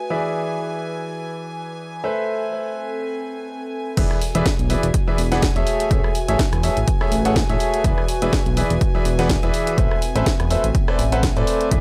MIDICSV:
0, 0, Header, 1, 6, 480
1, 0, Start_track
1, 0, Tempo, 483871
1, 101, Time_signature, 4, 2, 24, 8
1, 11711, End_track
2, 0, Start_track
2, 0, Title_t, "String section"
2, 0, Program_c, 0, 48
2, 0, Note_on_c, 0, 80, 76
2, 3929, Note_off_c, 0, 80, 0
2, 3941, Note_on_c, 0, 80, 85
2, 11609, Note_off_c, 0, 80, 0
2, 11621, Note_on_c, 0, 80, 87
2, 11711, Note_off_c, 0, 80, 0
2, 11711, End_track
3, 0, Start_track
3, 0, Title_t, "Grand piano"
3, 0, Program_c, 1, 0
3, 101, Note_on_c, 1, 52, 71
3, 101, Note_on_c, 1, 68, 64
3, 101, Note_on_c, 1, 71, 65
3, 101, Note_on_c, 1, 74, 67
3, 101, Note_on_c, 1, 76, 78
3, 1995, Note_off_c, 1, 52, 0
3, 1995, Note_off_c, 1, 71, 0
3, 1995, Note_off_c, 1, 76, 0
3, 1996, Note_off_c, 1, 68, 0
3, 1996, Note_off_c, 1, 74, 0
3, 2021, Note_on_c, 1, 57, 71
3, 2021, Note_on_c, 1, 69, 67
3, 2021, Note_on_c, 1, 71, 65
3, 2021, Note_on_c, 1, 72, 68
3, 2021, Note_on_c, 1, 76, 82
3, 3915, Note_off_c, 1, 69, 0
3, 3916, Note_off_c, 1, 57, 0
3, 3916, Note_off_c, 1, 71, 0
3, 3916, Note_off_c, 1, 72, 0
3, 3916, Note_off_c, 1, 76, 0
3, 3941, Note_on_c, 1, 71, 73
3, 3942, Note_on_c, 1, 52, 81
3, 3942, Note_on_c, 1, 68, 74
3, 3942, Note_on_c, 1, 74, 71
3, 3942, Note_on_c, 1, 76, 88
3, 4114, Note_off_c, 1, 52, 0
3, 4114, Note_off_c, 1, 68, 0
3, 4114, Note_off_c, 1, 71, 0
3, 4114, Note_off_c, 1, 74, 0
3, 4114, Note_off_c, 1, 76, 0
3, 4314, Note_on_c, 1, 52, 90
3, 4314, Note_on_c, 1, 68, 86
3, 4314, Note_on_c, 1, 71, 82
3, 4314, Note_on_c, 1, 74, 86
3, 4314, Note_on_c, 1, 76, 101
3, 4405, Note_off_c, 1, 52, 0
3, 4405, Note_off_c, 1, 68, 0
3, 4405, Note_off_c, 1, 71, 0
3, 4405, Note_off_c, 1, 74, 0
3, 4405, Note_off_c, 1, 76, 0
3, 4661, Note_on_c, 1, 52, 88
3, 4661, Note_on_c, 1, 68, 79
3, 4661, Note_on_c, 1, 71, 80
3, 4661, Note_on_c, 1, 74, 82
3, 4661, Note_on_c, 1, 76, 96
3, 4775, Note_off_c, 1, 52, 0
3, 4775, Note_off_c, 1, 68, 0
3, 4775, Note_off_c, 1, 71, 0
3, 4775, Note_off_c, 1, 74, 0
3, 4775, Note_off_c, 1, 76, 0
3, 5034, Note_on_c, 1, 52, 96
3, 5034, Note_on_c, 1, 68, 88
3, 5034, Note_on_c, 1, 71, 86
3, 5034, Note_on_c, 1, 74, 86
3, 5034, Note_on_c, 1, 76, 106
3, 5126, Note_off_c, 1, 52, 0
3, 5126, Note_off_c, 1, 68, 0
3, 5126, Note_off_c, 1, 71, 0
3, 5126, Note_off_c, 1, 74, 0
3, 5126, Note_off_c, 1, 76, 0
3, 5274, Note_on_c, 1, 52, 99
3, 5274, Note_on_c, 1, 68, 91
3, 5274, Note_on_c, 1, 71, 89
3, 5274, Note_on_c, 1, 74, 92
3, 5274, Note_on_c, 1, 78, 109
3, 5365, Note_off_c, 1, 52, 0
3, 5365, Note_off_c, 1, 71, 0
3, 5366, Note_off_c, 1, 68, 0
3, 5366, Note_off_c, 1, 74, 0
3, 5366, Note_off_c, 1, 78, 0
3, 5514, Note_on_c, 1, 57, 100
3, 5514, Note_on_c, 1, 68, 89
3, 5514, Note_on_c, 1, 69, 91
3, 5514, Note_on_c, 1, 73, 92
3, 5514, Note_on_c, 1, 76, 111
3, 5835, Note_off_c, 1, 57, 0
3, 5835, Note_off_c, 1, 68, 0
3, 5835, Note_off_c, 1, 69, 0
3, 5835, Note_off_c, 1, 73, 0
3, 5835, Note_off_c, 1, 76, 0
3, 5860, Note_on_c, 1, 68, 75
3, 5860, Note_on_c, 1, 69, 75
3, 5860, Note_on_c, 1, 73, 75
3, 5860, Note_on_c, 1, 76, 89
3, 5861, Note_on_c, 1, 57, 80
3, 6033, Note_off_c, 1, 68, 0
3, 6033, Note_off_c, 1, 69, 0
3, 6033, Note_off_c, 1, 73, 0
3, 6033, Note_off_c, 1, 76, 0
3, 6034, Note_off_c, 1, 57, 0
3, 6234, Note_on_c, 1, 57, 92
3, 6234, Note_on_c, 1, 68, 85
3, 6234, Note_on_c, 1, 69, 82
3, 6234, Note_on_c, 1, 73, 84
3, 6234, Note_on_c, 1, 76, 105
3, 6325, Note_off_c, 1, 57, 0
3, 6325, Note_off_c, 1, 68, 0
3, 6325, Note_off_c, 1, 69, 0
3, 6325, Note_off_c, 1, 73, 0
3, 6325, Note_off_c, 1, 76, 0
3, 6580, Note_on_c, 1, 57, 86
3, 6580, Note_on_c, 1, 73, 81
3, 6580, Note_on_c, 1, 76, 98
3, 6581, Note_on_c, 1, 68, 80
3, 6581, Note_on_c, 1, 69, 81
3, 6695, Note_off_c, 1, 57, 0
3, 6695, Note_off_c, 1, 68, 0
3, 6695, Note_off_c, 1, 69, 0
3, 6695, Note_off_c, 1, 73, 0
3, 6695, Note_off_c, 1, 76, 0
3, 6954, Note_on_c, 1, 57, 98
3, 6954, Note_on_c, 1, 68, 89
3, 6954, Note_on_c, 1, 69, 87
3, 6954, Note_on_c, 1, 73, 88
3, 6954, Note_on_c, 1, 76, 106
3, 7045, Note_off_c, 1, 57, 0
3, 7045, Note_off_c, 1, 68, 0
3, 7045, Note_off_c, 1, 69, 0
3, 7045, Note_off_c, 1, 73, 0
3, 7045, Note_off_c, 1, 76, 0
3, 7194, Note_on_c, 1, 57, 100
3, 7194, Note_on_c, 1, 68, 90
3, 7194, Note_on_c, 1, 69, 92
3, 7194, Note_on_c, 1, 73, 91
3, 7194, Note_on_c, 1, 78, 111
3, 7285, Note_off_c, 1, 57, 0
3, 7285, Note_off_c, 1, 68, 0
3, 7285, Note_off_c, 1, 69, 0
3, 7285, Note_off_c, 1, 73, 0
3, 7285, Note_off_c, 1, 78, 0
3, 7434, Note_on_c, 1, 57, 98
3, 7434, Note_on_c, 1, 68, 89
3, 7434, Note_on_c, 1, 69, 91
3, 7434, Note_on_c, 1, 73, 93
3, 7434, Note_on_c, 1, 76, 112
3, 7755, Note_off_c, 1, 57, 0
3, 7755, Note_off_c, 1, 68, 0
3, 7755, Note_off_c, 1, 69, 0
3, 7755, Note_off_c, 1, 73, 0
3, 7755, Note_off_c, 1, 76, 0
3, 7782, Note_on_c, 1, 52, 83
3, 7782, Note_on_c, 1, 68, 77
3, 7782, Note_on_c, 1, 71, 77
3, 7782, Note_on_c, 1, 74, 75
3, 7782, Note_on_c, 1, 76, 90
3, 7954, Note_off_c, 1, 52, 0
3, 7954, Note_off_c, 1, 68, 0
3, 7954, Note_off_c, 1, 71, 0
3, 7954, Note_off_c, 1, 74, 0
3, 7954, Note_off_c, 1, 76, 0
3, 8155, Note_on_c, 1, 52, 93
3, 8155, Note_on_c, 1, 68, 84
3, 8155, Note_on_c, 1, 71, 85
3, 8155, Note_on_c, 1, 74, 84
3, 8155, Note_on_c, 1, 76, 104
3, 8246, Note_off_c, 1, 52, 0
3, 8246, Note_off_c, 1, 68, 0
3, 8246, Note_off_c, 1, 71, 0
3, 8246, Note_off_c, 1, 74, 0
3, 8246, Note_off_c, 1, 76, 0
3, 8502, Note_on_c, 1, 52, 90
3, 8502, Note_on_c, 1, 68, 81
3, 8502, Note_on_c, 1, 71, 82
3, 8502, Note_on_c, 1, 74, 82
3, 8502, Note_on_c, 1, 76, 97
3, 8615, Note_off_c, 1, 71, 0
3, 8615, Note_off_c, 1, 74, 0
3, 8616, Note_off_c, 1, 52, 0
3, 8616, Note_off_c, 1, 68, 0
3, 8616, Note_off_c, 1, 76, 0
3, 8875, Note_on_c, 1, 52, 96
3, 8875, Note_on_c, 1, 68, 87
3, 8875, Note_on_c, 1, 71, 86
3, 8875, Note_on_c, 1, 74, 89
3, 8875, Note_on_c, 1, 76, 105
3, 8966, Note_off_c, 1, 52, 0
3, 8966, Note_off_c, 1, 68, 0
3, 8966, Note_off_c, 1, 71, 0
3, 8966, Note_off_c, 1, 74, 0
3, 8966, Note_off_c, 1, 76, 0
3, 9115, Note_on_c, 1, 52, 101
3, 9115, Note_on_c, 1, 68, 93
3, 9115, Note_on_c, 1, 71, 94
3, 9115, Note_on_c, 1, 74, 94
3, 9115, Note_on_c, 1, 78, 112
3, 9206, Note_off_c, 1, 52, 0
3, 9206, Note_off_c, 1, 68, 0
3, 9206, Note_off_c, 1, 71, 0
3, 9206, Note_off_c, 1, 74, 0
3, 9206, Note_off_c, 1, 78, 0
3, 9354, Note_on_c, 1, 52, 98
3, 9354, Note_on_c, 1, 68, 89
3, 9354, Note_on_c, 1, 71, 93
3, 9354, Note_on_c, 1, 74, 91
3, 9354, Note_on_c, 1, 76, 111
3, 9675, Note_off_c, 1, 52, 0
3, 9675, Note_off_c, 1, 68, 0
3, 9675, Note_off_c, 1, 71, 0
3, 9675, Note_off_c, 1, 74, 0
3, 9675, Note_off_c, 1, 76, 0
3, 9701, Note_on_c, 1, 57, 79
3, 9701, Note_on_c, 1, 69, 73
3, 9701, Note_on_c, 1, 71, 77
3, 9701, Note_on_c, 1, 72, 75
3, 9701, Note_on_c, 1, 76, 92
3, 9874, Note_off_c, 1, 57, 0
3, 9874, Note_off_c, 1, 69, 0
3, 9874, Note_off_c, 1, 71, 0
3, 9874, Note_off_c, 1, 72, 0
3, 9874, Note_off_c, 1, 76, 0
3, 10074, Note_on_c, 1, 57, 95
3, 10074, Note_on_c, 1, 69, 85
3, 10074, Note_on_c, 1, 71, 83
3, 10074, Note_on_c, 1, 72, 86
3, 10074, Note_on_c, 1, 76, 102
3, 10166, Note_off_c, 1, 57, 0
3, 10166, Note_off_c, 1, 69, 0
3, 10166, Note_off_c, 1, 71, 0
3, 10166, Note_off_c, 1, 72, 0
3, 10166, Note_off_c, 1, 76, 0
3, 10422, Note_on_c, 1, 57, 89
3, 10422, Note_on_c, 1, 69, 79
3, 10422, Note_on_c, 1, 71, 82
3, 10422, Note_on_c, 1, 72, 80
3, 10422, Note_on_c, 1, 76, 96
3, 10535, Note_off_c, 1, 57, 0
3, 10535, Note_off_c, 1, 69, 0
3, 10536, Note_off_c, 1, 71, 0
3, 10536, Note_off_c, 1, 72, 0
3, 10536, Note_off_c, 1, 76, 0
3, 10794, Note_on_c, 1, 74, 105
3, 10795, Note_on_c, 1, 57, 96
3, 10795, Note_on_c, 1, 69, 86
3, 10795, Note_on_c, 1, 71, 85
3, 10795, Note_on_c, 1, 72, 88
3, 10886, Note_off_c, 1, 57, 0
3, 10886, Note_off_c, 1, 69, 0
3, 10886, Note_off_c, 1, 71, 0
3, 10886, Note_off_c, 1, 72, 0
3, 10886, Note_off_c, 1, 74, 0
3, 11035, Note_on_c, 1, 57, 97
3, 11035, Note_on_c, 1, 69, 91
3, 11035, Note_on_c, 1, 71, 92
3, 11035, Note_on_c, 1, 72, 92
3, 11035, Note_on_c, 1, 78, 109
3, 11126, Note_off_c, 1, 57, 0
3, 11126, Note_off_c, 1, 69, 0
3, 11126, Note_off_c, 1, 71, 0
3, 11126, Note_off_c, 1, 72, 0
3, 11126, Note_off_c, 1, 78, 0
3, 11275, Note_on_c, 1, 57, 102
3, 11275, Note_on_c, 1, 69, 87
3, 11275, Note_on_c, 1, 71, 91
3, 11275, Note_on_c, 1, 72, 91
3, 11275, Note_on_c, 1, 74, 112
3, 11596, Note_off_c, 1, 57, 0
3, 11596, Note_off_c, 1, 69, 0
3, 11596, Note_off_c, 1, 71, 0
3, 11596, Note_off_c, 1, 72, 0
3, 11596, Note_off_c, 1, 74, 0
3, 11621, Note_on_c, 1, 52, 80
3, 11621, Note_on_c, 1, 68, 74
3, 11621, Note_on_c, 1, 71, 73
3, 11621, Note_on_c, 1, 76, 89
3, 11711, Note_off_c, 1, 52, 0
3, 11711, Note_off_c, 1, 68, 0
3, 11711, Note_off_c, 1, 71, 0
3, 11711, Note_off_c, 1, 76, 0
3, 11711, End_track
4, 0, Start_track
4, 0, Title_t, "Ambient pad"
4, 0, Program_c, 2, 92
4, 0, Note_on_c, 2, 57, 76
4, 0, Note_on_c, 2, 66, 91
4, 0, Note_on_c, 2, 71, 75
4, 0, Note_on_c, 2, 76, 73
4, 0, Note_on_c, 2, 80, 72
4, 101, Note_off_c, 2, 57, 0
4, 2022, Note_off_c, 2, 71, 0
4, 2023, Note_on_c, 2, 69, 70
4, 2546, Note_on_c, 2, 60, 82
4, 2794, Note_off_c, 2, 66, 0
4, 2795, Note_off_c, 2, 80, 0
4, 3940, Note_on_c, 2, 66, 84
4, 3942, Note_off_c, 2, 69, 0
4, 3943, Note_off_c, 2, 60, 0
4, 4164, Note_on_c, 2, 71, 76
4, 4701, Note_on_c, 2, 80, 87
4, 5621, Note_off_c, 2, 76, 0
4, 5772, Note_on_c, 2, 76, 84
4, 9701, Note_off_c, 2, 71, 0
4, 9701, Note_off_c, 2, 80, 0
4, 9702, Note_on_c, 2, 60, 89
4, 10474, Note_off_c, 2, 66, 0
4, 10575, Note_on_c, 2, 69, 84
4, 11619, Note_on_c, 2, 66, 75
4, 11621, Note_off_c, 2, 60, 0
4, 11621, Note_off_c, 2, 69, 0
4, 11711, Note_off_c, 2, 66, 0
4, 11711, Note_off_c, 2, 76, 0
4, 11711, End_track
5, 0, Start_track
5, 0, Title_t, "Analog synth bass"
5, 0, Program_c, 3, 38
5, 3941, Note_on_c, 3, 28, 103
5, 4040, Note_off_c, 3, 28, 0
5, 4314, Note_on_c, 3, 28, 89
5, 4393, Note_off_c, 3, 28, 0
5, 4554, Note_on_c, 3, 35, 87
5, 4725, Note_off_c, 3, 35, 0
5, 4794, Note_on_c, 3, 28, 101
5, 4873, Note_off_c, 3, 28, 0
5, 5140, Note_on_c, 3, 28, 96
5, 5459, Note_off_c, 3, 28, 0
5, 5514, Note_on_c, 3, 28, 94
5, 5593, Note_off_c, 3, 28, 0
5, 5860, Note_on_c, 3, 33, 99
5, 5960, Note_off_c, 3, 33, 0
5, 6235, Note_on_c, 3, 33, 89
5, 6314, Note_off_c, 3, 33, 0
5, 6474, Note_on_c, 3, 40, 84
5, 6645, Note_off_c, 3, 40, 0
5, 6714, Note_on_c, 3, 33, 99
5, 6793, Note_off_c, 3, 33, 0
5, 7061, Note_on_c, 3, 33, 95
5, 7379, Note_off_c, 3, 33, 0
5, 7434, Note_on_c, 3, 33, 94
5, 7513, Note_off_c, 3, 33, 0
5, 7781, Note_on_c, 3, 28, 97
5, 7880, Note_off_c, 3, 28, 0
5, 8154, Note_on_c, 3, 28, 87
5, 8233, Note_off_c, 3, 28, 0
5, 8394, Note_on_c, 3, 35, 86
5, 8565, Note_off_c, 3, 35, 0
5, 8634, Note_on_c, 3, 28, 100
5, 8713, Note_off_c, 3, 28, 0
5, 8981, Note_on_c, 3, 28, 97
5, 9299, Note_off_c, 3, 28, 0
5, 9354, Note_on_c, 3, 28, 92
5, 9433, Note_off_c, 3, 28, 0
5, 9701, Note_on_c, 3, 33, 100
5, 9800, Note_off_c, 3, 33, 0
5, 10074, Note_on_c, 3, 33, 90
5, 10153, Note_off_c, 3, 33, 0
5, 10314, Note_on_c, 3, 40, 85
5, 10485, Note_off_c, 3, 40, 0
5, 10554, Note_on_c, 3, 33, 99
5, 10633, Note_off_c, 3, 33, 0
5, 10900, Note_on_c, 3, 33, 97
5, 11219, Note_off_c, 3, 33, 0
5, 11274, Note_on_c, 3, 45, 97
5, 11353, Note_off_c, 3, 45, 0
5, 11620, Note_on_c, 3, 28, 99
5, 11711, Note_off_c, 3, 28, 0
5, 11711, End_track
6, 0, Start_track
6, 0, Title_t, "Drums"
6, 3941, Note_on_c, 9, 36, 118
6, 3941, Note_on_c, 9, 42, 68
6, 3941, Note_on_c, 9, 49, 102
6, 4040, Note_off_c, 9, 36, 0
6, 4040, Note_off_c, 9, 42, 0
6, 4040, Note_off_c, 9, 49, 0
6, 4074, Note_on_c, 9, 37, 66
6, 4174, Note_off_c, 9, 37, 0
6, 4181, Note_on_c, 9, 46, 104
6, 4281, Note_off_c, 9, 46, 0
6, 4315, Note_on_c, 9, 42, 57
6, 4414, Note_off_c, 9, 42, 0
6, 4421, Note_on_c, 9, 36, 120
6, 4421, Note_on_c, 9, 42, 67
6, 4424, Note_on_c, 9, 38, 123
6, 4520, Note_off_c, 9, 36, 0
6, 4520, Note_off_c, 9, 42, 0
6, 4523, Note_off_c, 9, 38, 0
6, 4555, Note_on_c, 9, 42, 38
6, 4654, Note_off_c, 9, 42, 0
6, 4661, Note_on_c, 9, 46, 104
6, 4760, Note_off_c, 9, 46, 0
6, 4794, Note_on_c, 9, 42, 54
6, 4894, Note_off_c, 9, 42, 0
6, 4901, Note_on_c, 9, 36, 120
6, 4901, Note_on_c, 9, 42, 70
6, 5000, Note_off_c, 9, 36, 0
6, 5000, Note_off_c, 9, 42, 0
6, 5141, Note_on_c, 9, 46, 105
6, 5240, Note_off_c, 9, 46, 0
6, 5275, Note_on_c, 9, 42, 55
6, 5277, Note_on_c, 9, 38, 38
6, 5374, Note_off_c, 9, 42, 0
6, 5376, Note_off_c, 9, 38, 0
6, 5381, Note_on_c, 9, 36, 117
6, 5382, Note_on_c, 9, 42, 71
6, 5384, Note_on_c, 9, 38, 127
6, 5480, Note_off_c, 9, 36, 0
6, 5481, Note_off_c, 9, 42, 0
6, 5483, Note_off_c, 9, 38, 0
6, 5515, Note_on_c, 9, 42, 38
6, 5614, Note_off_c, 9, 42, 0
6, 5621, Note_on_c, 9, 46, 107
6, 5720, Note_off_c, 9, 46, 0
6, 5755, Note_on_c, 9, 42, 56
6, 5854, Note_off_c, 9, 42, 0
6, 5861, Note_on_c, 9, 36, 125
6, 5861, Note_on_c, 9, 42, 68
6, 5960, Note_off_c, 9, 36, 0
6, 5960, Note_off_c, 9, 42, 0
6, 5995, Note_on_c, 9, 37, 64
6, 6094, Note_off_c, 9, 37, 0
6, 6101, Note_on_c, 9, 46, 107
6, 6200, Note_off_c, 9, 46, 0
6, 6235, Note_on_c, 9, 42, 53
6, 6334, Note_off_c, 9, 42, 0
6, 6341, Note_on_c, 9, 36, 122
6, 6341, Note_on_c, 9, 42, 65
6, 6344, Note_on_c, 9, 38, 120
6, 6440, Note_off_c, 9, 36, 0
6, 6441, Note_off_c, 9, 42, 0
6, 6443, Note_off_c, 9, 38, 0
6, 6475, Note_on_c, 9, 37, 80
6, 6475, Note_on_c, 9, 42, 38
6, 6574, Note_off_c, 9, 37, 0
6, 6574, Note_off_c, 9, 42, 0
6, 6581, Note_on_c, 9, 46, 110
6, 6680, Note_off_c, 9, 46, 0
6, 6714, Note_on_c, 9, 42, 53
6, 6813, Note_off_c, 9, 42, 0
6, 6821, Note_on_c, 9, 36, 127
6, 6821, Note_on_c, 9, 42, 67
6, 6920, Note_off_c, 9, 36, 0
6, 6920, Note_off_c, 9, 42, 0
6, 6954, Note_on_c, 9, 37, 85
6, 7053, Note_off_c, 9, 37, 0
6, 7061, Note_on_c, 9, 46, 108
6, 7160, Note_off_c, 9, 46, 0
6, 7194, Note_on_c, 9, 42, 54
6, 7294, Note_off_c, 9, 42, 0
6, 7301, Note_on_c, 9, 36, 125
6, 7301, Note_on_c, 9, 42, 68
6, 7303, Note_on_c, 9, 38, 125
6, 7400, Note_off_c, 9, 36, 0
6, 7400, Note_off_c, 9, 42, 0
6, 7403, Note_off_c, 9, 38, 0
6, 7434, Note_on_c, 9, 42, 38
6, 7534, Note_off_c, 9, 42, 0
6, 7541, Note_on_c, 9, 46, 112
6, 7640, Note_off_c, 9, 46, 0
6, 7675, Note_on_c, 9, 42, 56
6, 7774, Note_off_c, 9, 42, 0
6, 7781, Note_on_c, 9, 36, 127
6, 7781, Note_on_c, 9, 42, 65
6, 7880, Note_off_c, 9, 36, 0
6, 7880, Note_off_c, 9, 42, 0
6, 7914, Note_on_c, 9, 37, 64
6, 8013, Note_off_c, 9, 37, 0
6, 8020, Note_on_c, 9, 46, 113
6, 8120, Note_off_c, 9, 46, 0
6, 8154, Note_on_c, 9, 42, 53
6, 8253, Note_off_c, 9, 42, 0
6, 8261, Note_on_c, 9, 36, 122
6, 8261, Note_on_c, 9, 42, 62
6, 8263, Note_on_c, 9, 38, 119
6, 8360, Note_off_c, 9, 36, 0
6, 8360, Note_off_c, 9, 42, 0
6, 8363, Note_off_c, 9, 38, 0
6, 8394, Note_on_c, 9, 42, 35
6, 8493, Note_off_c, 9, 42, 0
6, 8501, Note_on_c, 9, 46, 110
6, 8600, Note_off_c, 9, 46, 0
6, 8634, Note_on_c, 9, 42, 51
6, 8733, Note_off_c, 9, 42, 0
6, 8741, Note_on_c, 9, 36, 127
6, 8741, Note_on_c, 9, 42, 66
6, 8840, Note_off_c, 9, 36, 0
6, 8840, Note_off_c, 9, 42, 0
6, 8980, Note_on_c, 9, 46, 112
6, 9079, Note_off_c, 9, 46, 0
6, 9114, Note_on_c, 9, 42, 51
6, 9117, Note_on_c, 9, 38, 38
6, 9214, Note_off_c, 9, 42, 0
6, 9216, Note_off_c, 9, 38, 0
6, 9221, Note_on_c, 9, 36, 125
6, 9221, Note_on_c, 9, 42, 66
6, 9223, Note_on_c, 9, 38, 127
6, 9320, Note_off_c, 9, 36, 0
6, 9320, Note_off_c, 9, 42, 0
6, 9323, Note_off_c, 9, 38, 0
6, 9355, Note_on_c, 9, 42, 37
6, 9454, Note_off_c, 9, 42, 0
6, 9461, Note_on_c, 9, 46, 112
6, 9560, Note_off_c, 9, 46, 0
6, 9595, Note_on_c, 9, 42, 52
6, 9694, Note_off_c, 9, 42, 0
6, 9701, Note_on_c, 9, 36, 126
6, 9701, Note_on_c, 9, 42, 65
6, 9800, Note_off_c, 9, 36, 0
6, 9800, Note_off_c, 9, 42, 0
6, 9835, Note_on_c, 9, 37, 64
6, 9934, Note_off_c, 9, 37, 0
6, 9941, Note_on_c, 9, 46, 107
6, 10040, Note_off_c, 9, 46, 0
6, 10075, Note_on_c, 9, 42, 53
6, 10174, Note_off_c, 9, 42, 0
6, 10181, Note_on_c, 9, 36, 118
6, 10181, Note_on_c, 9, 42, 62
6, 10184, Note_on_c, 9, 38, 114
6, 10280, Note_off_c, 9, 36, 0
6, 10280, Note_off_c, 9, 42, 0
6, 10283, Note_off_c, 9, 38, 0
6, 10315, Note_on_c, 9, 37, 82
6, 10315, Note_on_c, 9, 42, 35
6, 10414, Note_off_c, 9, 37, 0
6, 10414, Note_off_c, 9, 42, 0
6, 10421, Note_on_c, 9, 46, 112
6, 10520, Note_off_c, 9, 46, 0
6, 10554, Note_on_c, 9, 42, 50
6, 10654, Note_off_c, 9, 42, 0
6, 10661, Note_on_c, 9, 36, 127
6, 10661, Note_on_c, 9, 42, 61
6, 10760, Note_off_c, 9, 36, 0
6, 10761, Note_off_c, 9, 42, 0
6, 10795, Note_on_c, 9, 37, 84
6, 10894, Note_off_c, 9, 37, 0
6, 10901, Note_on_c, 9, 46, 109
6, 11000, Note_off_c, 9, 46, 0
6, 11034, Note_on_c, 9, 42, 50
6, 11133, Note_off_c, 9, 42, 0
6, 11141, Note_on_c, 9, 36, 122
6, 11141, Note_on_c, 9, 42, 62
6, 11143, Note_on_c, 9, 38, 117
6, 11240, Note_off_c, 9, 36, 0
6, 11240, Note_off_c, 9, 42, 0
6, 11243, Note_off_c, 9, 38, 0
6, 11274, Note_on_c, 9, 42, 34
6, 11374, Note_off_c, 9, 42, 0
6, 11381, Note_on_c, 9, 46, 113
6, 11480, Note_off_c, 9, 46, 0
6, 11514, Note_on_c, 9, 42, 52
6, 11613, Note_off_c, 9, 42, 0
6, 11621, Note_on_c, 9, 36, 124
6, 11621, Note_on_c, 9, 42, 64
6, 11711, Note_off_c, 9, 36, 0
6, 11711, Note_off_c, 9, 42, 0
6, 11711, End_track
0, 0, End_of_file